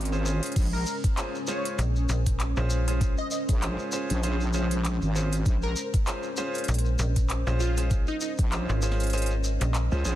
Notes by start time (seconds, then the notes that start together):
Already playing: G#1 G#3 C#4 A#4 D#5 D#6
0.01 closed hi-hat
0.05 closed hi-hat
0.12 C#4 F4 G#4 C5, shekere
0.26 C#4 F4 G#4 C5, shekere
0.43 closed hi-hat, shekere
0.46 closed hi-hat
0.52 closed hi-hat
0.56 A#1 C5, kick, closed hi-hat, crash, shekere
0.62 closed hi-hat
0.66 closed hi-hat
0.73 A#4, shekere
0.86 shekere
1.04 kick, closed hi-hat, shekere
1.17 C#4 F4 G#4 C5, clap, closed hi-hat, shekere
1.27 C6
1.35 shekere
1.47 C#4 F4 G#4 C5 C#5, snare, shekere
1.65 closed hi-hat, shekere
1.78 A#1, closed hi-hat, shekere
1.96 shekere
2.09 A#1, shekere
2.26 kick, closed hi-hat, shekere
2.39 clap, closed hi-hat, shekere
2.56 A#1 C#4 F4 G#4 C5, shekere
2.70 shekere
2.88 C#4 F4 G#4 C5, closed hi-hat, shekere
3.01 kick, closed hi-hat, shekere
3.17 D#5, shekere
3.31 D#5, shekere
3.49 A#1, kick, closed hi-hat, shekere
3.62 C#4 F4 G#4 C5, clap, closed hi-hat, shekere
3.79 shekere
3.92 C#4 F4 G#4 C5, shekere
4.10 A#1, closed hi-hat, shekere
4.23 C#4 F4 G#4 C5, closed hi-hat, shekere
4.41 shekere
4.53 C#4 F4 G#4 C5, shekere
4.71 closed hi-hat, shekere
4.84 clap, closed hi-hat, shekere
5.02 G#1, shekere
5.15 C#4 F4 G#4 C5, shekere
5.32 closed hi-hat, shekere
5.46 A#1, kick, closed hi-hat, shekere
5.62 A#4, shekere
5.76 shekere
5.94 kick, closed hi-hat, shekere
6.06 C#4 F4 G#4 C5, clap, closed hi-hat, shekere
6.17 D#5
6.23 shekere
6.37 C#4 F4 G#4 C5, snare, shekere
6.54 closed hi-hat, shekere
6.58 closed hi-hat
6.64 closed hi-hat
6.68 A#1, closed hi-hat, shekere
6.74 closed hi-hat
6.79 closed hi-hat
6.85 shekere
6.99 A#1, shekere
7.16 kick, closed hi-hat, shekere
7.29 clap, closed hi-hat, shekere
7.47 A#1 C#4 F4 G#4 C5, shekere
7.60 F4, shekere
7.77 C#4 F4 G#4 C5, closed hi-hat, shekere
7.90 kick, closed hi-hat, shekere
8.07 D#4, shekere
8.21 D#4, shekere
8.38 A#1, kick, closed hi-hat, shekere
8.52 C#4 F4 G#4 C5, clap, closed hi-hat, shekere
8.69 G#1, shekere
8.82 C#4 F4 G#4 C5, shekere
8.91 snare
9.00 closed hi-hat, shekere
9.03 closed hi-hat
9.07 closed hi-hat
9.10 closed hi-hat, shekere
9.13 C#4 F4 G#4 C5, closed hi-hat
9.18 closed hi-hat
9.22 closed hi-hat
9.26 closed hi-hat
9.30 shekere
9.44 shekere
9.61 A#1, closed hi-hat, shekere
9.74 clap, closed hi-hat, shekere
9.92 C#2 C#4 F4 G#4 C5, shekere
10.05 A#1 C#4 F4 G#4 C5, shekere